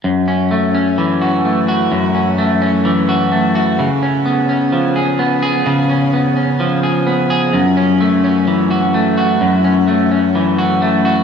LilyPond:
\new Staff \with { instrumentName = "Clean electric guitar" } { \time 4/4 \key fis \minor \tempo 4 = 64 fis,16 cis'16 a16 cis'16 e16 fis'16 a16 fis'16 fis,16 cis'16 a16 cis'16 e16 fis'16 a16 fis'16 | cis16 cis'16 b16 cis'16 eis16 gis'16 b16 gis'16 cis16 cis'16 b16 cis'16 eis16 gis'16 b16 gis'16 | fis,16 cis'16 a16 cis'16 e16 fis'16 a16 fis'16 fis,16 cis'16 a16 cis'16 e16 fis'16 a16 fis'16 | }